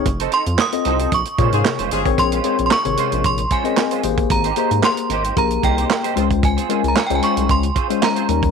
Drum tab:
HH |xxxx-xxxxxxx-xxx|xxxx-xxxxxxx-xxx|xxxx-xxxxxxx-xxx|xxxx-xxxxxxx-xxx|
CP |----x-------x---|----x-------x---|----x-------x---|----x-------x---|
SD |----o-------o---|----o-------o---|----o-------o---|----o-------o---|
BD |o-------o-o----o|o-------o-o----o|o-------o-o----o|o-------o-o----o|